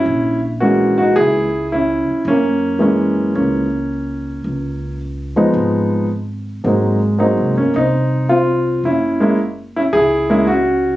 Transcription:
X:1
M:4/4
L:1/8
Q:"Swing" 1/4=109
K:Gb
V:1 name="Grand piano"
[D_F] z [DG] [EG] [FA]2 [DF]2 | [B,D]4 [B,D]4- | [B,D]2 z6 | A,2 A, [B,D] [=CE]2 [CF]2 |
[D_F]2 z [DF] [FA]2 [DG]2 |]
V:2 name="Grand piano"
z2 [_F,A,B,]3 z3 | z2 [_F,A,B,D]3 z3 | z3 [F,A,CE]3 z2 | [G,B,=CE] z [G,B,CE] z4 z |
z [A,B,D_F] z3 [A,B,DF] z2 |]
V:3 name="Upright bass" clef=bass
B,,,4 D,,3 z | G,,4 D,,4 | D,,3 =D,, A,,,4 | A,,,2- (3A,,, =C,, =G,,, C,,4 |
G,,,4 D,,4 |]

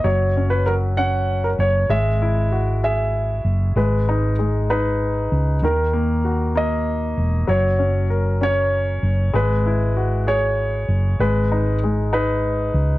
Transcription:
X:1
M:6/8
L:1/16
Q:3/8=65
K:G#m
V:1 name="Grand piano"
c3 B A2 f3 A c2 | e6 e6 | B4 z2 B6 | A6 d6 |
c4 z2 c6 | B6 c6 | B4 z2 B6 |]
V:2 name="Grand piano"
F,2 C2 F,2 C6 | G,2 E2 F2 G6 | G,2 D2 G,2 D6 | D,2 A,2 F2 A,6 |
F,2 C2 A2 C6 | G,2 E2 F2 G6 | G,2 D2 G,2 D6 |]
V:3 name="Fingered electric bass" clef=bass
F,,,8- F,,,2 F,,,2 | G,,,8- G,,,2 F,,,2 | G,,,8- G,,,2 C,,2 | D,,8- D,,2 E,,,2 |
F,,,8- F,,,2 F,,,2 | G,,,8- G,,,2 F,,,2 | G,,,8- G,,,2 C,,2 |]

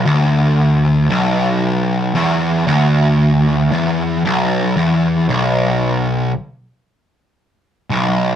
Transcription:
X:1
M:4/4
L:1/8
Q:1/4=57
K:Bm
V:1 name="Distorted electric guitar" clef=bass
D,,2 B,,,2 E,, D,,2 E,, | B,,, E,, B,,,2 z3 B,,, |]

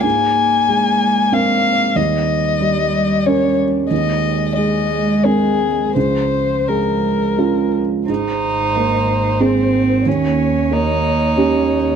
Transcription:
X:1
M:3/4
L:1/8
Q:1/4=92
K:Ab
V:1 name="Violin"
a4 f2 | e4 d z | e2 e2 A2 | c2 B3 z |
c6 | d6 |]
V:2 name="Cello"
B,6 | G,6 | A,6 | F,4- F, z |
E4 C2 | D2 E4 |]
V:3 name="Felt piano"
A,,2 A,2 [CB]2 | E,,2 G,2 [DB]2 | E,,2 A,2 [CB]2 | D,,2 A,2 [DF]2 |
A,,2 B,2 [CA]2 | E,,2 B,2 [DG]2 |]
V:4 name="Double bass" clef=bass
z6 | z6 | z6 | z6 |
A,,,6 | E,,6 |]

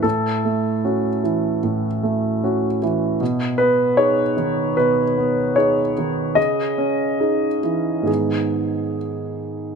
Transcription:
X:1
M:4/4
L:1/8
Q:1/4=75
K:G#phr
V:1 name="Grand piano"
A6- A z | z B c2 B2 c2 | d4 G2 z2 |]
V:2 name="Grand piano"
A,, A, [CF] E, A,, A, [CF] E, | B,, B, [DG] D, B,, B, [DG] D, | C, C [DG] E, [G,,D,B,]4 |]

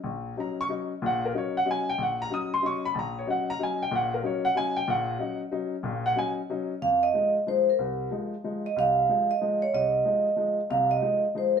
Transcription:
X:1
M:3/4
L:1/8
Q:"Swing" 1/4=186
K:Ebm
V:1 name="Vibraphone"
z6 | z6 | z6 | z6 |
z6 | z6 | z6 | [K:Fm] f e2 z c B- |
B2 z3 e | f3 e2 d | e4- e z | f e2 z c z |]
V:2 name="Upright piano"
z2 b d' z2 | g B d g a =g | g b e' =c' d' _c' | [=ab] d g b _a =g |
g B d g a =g | g3 z3 | z g a z3 | [K:Fm] z6 |
z6 | z6 | z6 | z6 |]
V:3 name="Upright piano" clef=bass
B,,,2 [G,DE] z [G,DE] z | [B,,,B,,]2 [G,DE] z [G,DE] z | B,,,2 [G,DE] z [G,DE] z | B,,,2 [G,DE] z [G,DE] z |
[B,,,B,,]2 [G,DE] z [G,DE] z | [B,,,B,,]2 [G,DE] z [G,DE] z | [B,,,B,,]2 [G,DE] z [G,DE] z | [K:Fm] F,,2 [F,A,E] z [F,A,E] z |
C,,2 [F,A,E] z [F,A,E] z | C,,2 [F,A,E] z [F,A,E] z | C,,2 [F,A,E] z [F,A,E] z | [C,,C,]2 [F,A,E] z [F,A,E] z |]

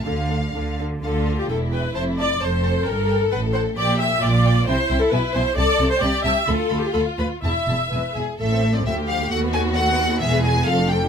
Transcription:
X:1
M:2/4
L:1/16
Q:1/4=132
K:Gdor
V:1 name="Violin section"
f6 z2 | f2 f2 g2 g2 | a2 a2 a2 a2 | g2 g2 ^f2 f2 |
g2 g2 g2 g2 | [K:Am] g2 g2 ^g2 g2 | a2 a2 a2 a2 | b2 b2 b2 b2 |
a2 a2 ^g2 g2 | e3 d e2 f2 | ^f2 ^g2 f4 | e2 ^g2 f2 =g2 |]
V:2 name="Viola section"
[DA]2 [DA]2 [DA]2 [DA]2 | A3 G A2 =B2 | c2 d2 c4 | B3 A =B2 c2 |
d2 e2 d4 | [K:Am] c3 A B2 c2 | d3 c d2 e2 | A3 G A2 B2 |
e6 z2 | [A,A] [Cc] [A,A] [Cc] [F,A] [A,F] [F,A] [A,F] | [A,A] [B,B] [A,A] [B,B] [A,A] [B,B] [A,A] [B,B] | [^G,^G] [B,B] [G,G] [B,B] [FA] [DF] [FA] [DF] |]
V:3 name="Violin section"
f6 z2 | F4 E4- | E4 A4- | A8 |
G4 F4 | [K:Am] E8 | A4 G4 | F8 |
E4 B2 ^G2 | A4 G4 | ^F8 | ^G4 A4 |]
V:4 name="Cello section" clef=bass
D,4 D,4 | D,4 E,,4 | F,,4 F,,4 | G,,4 A,,4 |
B,,4 B,,4 | [K:Am] C,2 C,2 B,,2 B,,2 | C,2 C,2 C,2 C,2 | D,,2 D,,2 D,,2 D,,2 |
E,,2 E,,2 E,,2 E,,2 | A,,4 D,,4 | ^D,,8 | E,,4 F,,4 |]
V:5 name="Double bass section" clef=bass
D,,4 D,,4 | D,,4 E,,,4 | F,,,4 F,,,4 | G,,,4 A,,,4 |
B,,,4 B,,,4 | [K:Am] C,,2 C,,2 B,,,2 B,,,2 | C,,2 C,,2 C,,2 C,,2 | D,,2 D,,2 D,,2 D,,2 |
E,,,2 E,,,2 E,,,2 E,,,2 | A,,,4 D,,4 | ^D,,8 | E,,,4 F,,,4 |]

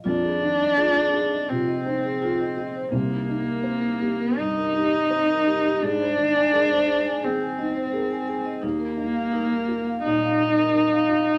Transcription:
X:1
M:4/4
L:1/16
Q:1/4=85
K:Fdor
V:1 name="Vibraphone"
F A z2 F A A e F e c A F e e c | C E z B C E E B C B G E C B B G | A c z a A c c a A a e c A a a e | E B z f E B B f E f e B E f f e |]
V:2 name="Felt piano"
F,,2 E,2 A2 F2 C,2 E2 A2 F2 | C,,2 E2 c2 G2 G,,2 E2 c2 G2 | A,,2 E,2 B2 A2 E,2 E2 B2 A2 | E,,2 E2 B2 F2 B,,2 E2 B2 F2 |]
V:3 name="Cello"
D8 C8 | B,8 E8 | D8 C8 | B,8 E8 |]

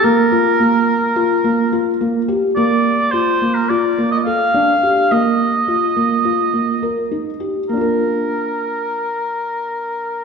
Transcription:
X:1
M:9/8
L:1/16
Q:3/8=71
K:Bb
V:1 name="Oboe"
B12- B2 z4 | d4 c3 B d3 e f6 | e12- e2 z4 | B16- B2 |]
V:2 name="Felt piano"
B,2 F2 B,4 F2 B,2 F2 B,2 G2 | B,4 F2 B,2 F2 B,2 A2 D2 G2 | B,4 F2 B,2 F2 B,2 B2 E2 G2 | [B,DFB]16- [B,DFB]2 |]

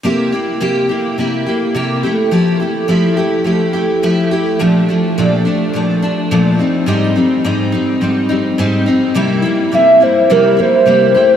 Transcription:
X:1
M:4/4
L:1/8
Q:"Swing 16ths" 1/4=105
K:Cmix
V:1 name="Soft synth lead"
z8 | z8 | z8 | z8 |
z2 e c B c3 |]
V:2 name="Steel-string acoustic guitar"
[C,B,EG] [B,EG] [C,B,EG] [B,EG] [C,B,EG] [B,EG] [C,B,EG] [A,EG] | [F,A,EG] [A,EG] [F,A,EG] [A,EG] [F,A,EG] [A,EG] [F,A,EG] [A,EG] | [B,,F,A,D] [F,A,D] [B,,F,A,D] [F,A,D] [B,,F,A,D] [F,A,D] [B,,F,A,D] [G,C_E] | [_A,,G,C_E] [G,CE] [A,,G,CE] [G,CE] [A,,G,CE] [G,CE] [A,,G,CE] [G,CE] |
[C,G,B,E] [G,B,E] [C,G,B,E] [G,B,E] [C,G,B,E] [G,B,E] [C,G,B,E] [A,EG] |]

